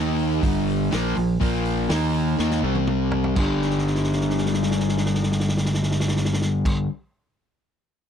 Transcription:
0.00 0.40 D#2 loud
0.00 0.41 D#3 medium
0.00 0.42 A#3 medium
0.00 0.42 D#4 loud
0.19 open hi-hat medium
0.42 0.88 G1 medium
0.42 0.91 G2 medium
0.42 0.91 D3 loud
0.42 0.91 G3 loud
0.42 kick loud
0.42 open hi-hat medium
0.67 open hi-hat medium
0.91 1.15 A#1 loud
0.91 1.15 A#2 medium
0.91 1.15 F3 medium
0.91 1.16 A#3 loud
0.91 snare loud
0.91 open hi-hat medium
1.16 1.40 A#1 medium
1.16 1.36 A#2 medium
1.16 1.36 F3 medium
1.16 open hi-hat medium
1.40 1.87 A#1 medium
1.40 1.89 A#2 medium
1.40 1.89 F3 medium
1.40 1.89 A#3 loud
1.40 kick loud
1.40 open hi-hat medium
1.65 open hi-hat medium
1.89 2.36 D#2 loud
1.89 2.37 D#3 medium
1.89 2.38 A#3 loud
1.89 2.39 D#4 loud
1.89 snare loud
1.89 open hi-hat medium
2.14 open hi-hat medium
2.38 2.62 D#2 medium
2.38 2.62 D#3 medium
2.38 2.63 A#3 loud
2.38 2.63 D#4 loud
2.38 snare medium
2.51 snare medium
2.63 3.33 C2 loud
2.63 3.36 C3 medium
2.63 3.36 G3 loud
2.63 3.37 C4 loud
2.75 high tom medium
2.87 mid tom medium
3.11 floor tom loud
3.24 floor tom loud
3.36 6.71 G1 medium
3.36 6.86 G2 medium
3.36 6.88 D3 medium
3.36 6.90 G3 medium
3.36 kick loud
3.36 crash loud
3.62 snare soft
3.70 snare soft
3.78 snare medium
3.87 snare medium
3.95 snare medium
4.04 snare medium
4.12 snare medium
4.21 snare medium
4.30 snare medium
4.38 snare medium
4.46 snare medium
4.54 snare medium
4.63 snare medium
4.71 snare medium
4.80 snare medium
4.89 snare medium
4.97 snare medium
5.06 snare medium
5.14 snare medium
5.23 snare medium
5.32 snare medium
5.40 snare medium
5.49 snare medium
5.57 snare medium
5.65 snare medium
5.74 snare medium
5.83 snare medium
5.91 snare medium
6.00 snare medium
6.08 snare medium
6.17 snare medium
6.25 snare medium
6.33 snare loud
6.41 snare medium
6.65 kick loud
6.65 crash loud

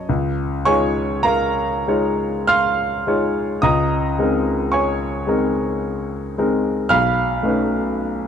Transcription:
0.00 0.10 D#5 soft
0.00 0.10 A5 soft
0.00 0.10 B5 soft
0.09 0.65 C#2 medium
0.65 1.83 G#3 soft
0.65 1.84 D#4 soft
0.65 1.84 F4 soft
0.65 1.21 C#5 medium
0.65 1.21 G#5 medium
0.65 1.25 C#6 medium
1.23 2.45 A#4 medium
1.23 2.45 F5 medium
1.23 2.48 A#5 medium
1.88 3.03 G#3 soft
1.88 3.03 D#4 soft
1.88 3.03 F4 soft
1.88 3.03 C#5 soft
2.47 3.58 F5 medium
2.47 3.58 C6 medium
2.47 3.61 F6 loud
3.07 3.58 G#3 soft
3.07 3.59 D#4 soft
3.07 3.59 F4 soft
3.07 3.59 C#5 soft
3.62 4.17 C#2 medium
3.62 4.71 D#5 medium
3.62 4.71 A#5 medium
3.62 4.74 D#6 medium
4.19 5.25 G#3 soft
4.19 5.25 C4 soft
4.19 5.25 D#4 soft
4.19 5.25 A#4 soft
4.72 6.33 C#5 medium
4.72 6.32 G#5 medium
4.72 6.36 C#6 medium
5.27 6.32 G#3 soft
5.27 6.33 C4 soft
5.27 6.33 D#4 soft
5.27 6.33 A#4 soft
6.38 6.87 G#3 soft
6.38 6.87 C4 soft
6.38 6.87 D#4 soft
6.38 6.88 A#4 soft
6.89 7.41 B1 medium
6.89 8.28 F5 medium
6.89 8.28 B5 medium
6.89 8.28 F6 loud
7.43 8.28 A3 soft
7.43 8.28 C#4 soft
7.43 8.28 D#4 soft
7.43 8.28 B4 soft

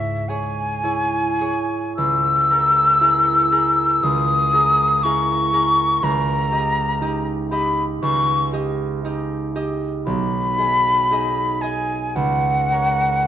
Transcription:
0.00 1.49 C#2 medium
0.00 2.01 G#2 medium
0.00 0.82 E4 soft
0.00 0.28 G#4 soft
0.00 0.29 C#5 medium
0.00 0.30 E5 medium
0.29 0.83 G#4 soft
0.29 0.83 C#5 medium
0.29 1.96 G#5 loud
0.83 3.00 E4 medium
0.83 1.40 G#4 medium
0.83 1.40 C#5 medium
1.41 2.49 G#4 medium
1.41 5.31 C#5 medium
1.97 4.02 C#2 medium
1.97 4.05 E6 loud
2.50 3.00 G#4 medium
2.50 3.00 A#4 medium
3.01 5.03 E4 medium
3.01 3.51 G#4 medium
3.01 3.51 A#4 medium
3.52 4.53 G#4 medium
3.52 4.53 A#4 medium
4.03 6.02 C#2 medium
4.03 5.05 D#6 loud
4.54 5.04 G#4 medium
4.54 5.04 A#4 medium
5.03 6.07 E4 medium
5.03 5.52 G#4 medium
5.03 5.52 A#4 medium
5.03 6.05 C#6 loud
5.53 6.07 G#4 medium
5.53 9.44 A#4 medium
6.03 8.01 C#2 medium
6.03 7.29 A#5 loud
6.52 7.00 G4 medium
6.52 7.01 D#5 medium
7.01 9.03 D#4 medium
7.01 7.50 G4 medium
7.01 7.51 D#5 medium
7.51 8.52 G4 medium
7.51 8.52 D#5 medium
7.51 7.85 B5 loud
8.02 10.11 C#2 medium
8.02 8.50 C#6 loud
8.53 9.04 G4 medium
8.53 9.04 D#5 medium
9.04 11.10 D#4 medium
9.04 9.54 G4 medium
9.04 9.54 D#5 medium
9.55 10.11 G4 medium
9.55 10.58 D#5 medium
10.06 12.21 B1 medium
10.06 11.63 B5 loud
10.58 11.10 G#4 medium
10.58 11.11 D#5 medium
11.11 12.21 D#4 medium
11.11 11.62 G#4 medium
11.11 11.62 D#5 medium
11.61 12.21 G#4 medium
11.61 12.21 D#5 medium
11.61 12.17 G#5 loud
12.15 13.27 C#2 medium
12.15 13.27 F#5 loud
12.72 13.27 A#4 medium
12.72 13.27 C#5 medium

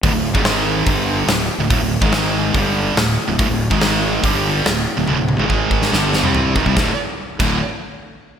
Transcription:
0.03 0.12 D1 medium
0.03 0.12 D2 medium
0.03 0.12 A2 loud
0.03 kick loud
0.03 open hi-hat medium
0.13 0.33 D1 medium
0.13 0.30 D2 medium
0.13 0.31 A2 medium
0.33 0.84 G#1 loud
0.33 0.86 G#2 medium
0.33 0.86 D#3 loud
0.33 0.87 G#3 loud
0.33 kick loud
0.45 snare loud
0.45 open hi-hat medium
0.86 1.26 G1 medium
0.86 1.28 G2 medium
0.86 1.28 D3 loud
0.86 1.29 G3 medium
0.86 kick loud
0.86 open hi-hat medium
1.27 1.48 D1 medium
1.27 1.46 D2 medium
1.27 1.46 A2 medium
1.27 snare loud
1.27 open hi-hat medium
1.58 1.69 D1 medium
1.58 1.69 D2 medium
1.58 1.70 A2 medium
1.70 1.80 D1 loud
1.70 1.79 D2 loud
1.70 1.80 A2 loud
1.70 kick loud
1.70 open hi-hat medium
1.81 2.01 D1 medium
1.81 1.98 D2 medium
1.81 1.98 A2 medium
2.01 2.51 G#1 loud
2.01 2.54 G#2 medium
2.01 2.54 D#3 loud
2.01 2.54 G#3 loud
2.01 kick loud
2.12 snare loud
2.12 open hi-hat medium
2.54 2.94 G1 medium
2.54 2.95 G2 loud
2.54 2.96 D3 loud
2.54 2.97 G3 loud
2.54 kick loud
2.54 open hi-hat medium
2.96 3.16 D1 medium
2.96 3.13 D2 medium
2.96 3.14 A2 medium
2.96 snare loud
2.96 open hi-hat medium
3.27 3.39 D1 medium
3.27 3.37 D2 medium
3.27 3.38 A2 medium
3.38 3.49 D1 loud
3.38 3.48 D2 loud
3.38 3.48 A2 loud
3.38 kick loud
3.38 open hi-hat medium
3.49 3.69 D1 medium
3.49 3.66 D2 medium
3.49 3.67 A2 medium
3.70 4.20 G#1 loud
3.70 4.23 G#2 loud
3.70 4.23 D#3 loud
3.70 4.23 G#3 loud
3.70 kick loud
3.81 snare loud
3.81 open hi-hat medium
4.23 4.63 G1 medium
4.23 4.65 G2 medium
4.23 4.65 D3 loud
4.23 4.65 G3 loud
4.23 kick loud
4.23 open hi-hat medium
4.66 4.86 D1 medium
4.66 4.83 D2 medium
4.66 4.83 A2 medium
4.66 snare loud
4.66 open hi-hat medium
4.97 5.08 D1 medium
4.97 5.06 D2 medium
4.97 5.07 A2 medium
5.07 5.18 D1 loud
5.07 5.17 D2 loud
5.07 5.17 A2 loud
5.07 high tom medium
5.18 5.39 D1 medium
5.18 5.35 D2 medium
5.18 5.35 A2 medium
5.28 high tom medium
5.38 5.89 G#1 medium
5.38 5.91 G#2 loud
5.38 5.91 D#3 medium
5.38 5.92 G#3 medium
5.38 high tom medium
5.50 kick medium
5.71 kick medium
5.82 snare medium
5.91 6.22 G1 medium
5.91 6.23 G2 medium
5.91 6.23 D3 loud
5.91 6.22 G3 loud
5.91 snare medium
6.14 snare medium
6.23 6.53 C2 medium
6.23 6.55 C3 loud
6.23 6.55 G3 medium
6.23 6.55 C4 loud
6.23 mid tom medium
6.35 floor tom loud
6.55 6.65 G#1 medium
6.55 6.65 G#2 medium
6.55 6.66 D#3 loud
6.55 kick loud
6.66 6.76 C2 medium
6.66 6.75 C3 medium
6.66 6.76 G3 loud
6.66 kick medium
6.75 6.89 D1 loud
6.75 6.89 D2 loud
6.75 6.89 A2 loud
6.75 6.90 D3 loud
6.75 kick loud
6.75 snare medium
7.40 7.60 D1 medium
7.40 7.57 D2 medium
7.40 7.57 A2 loud
7.40 7.58 D3 loud
7.40 kick loud
7.40 crash medium

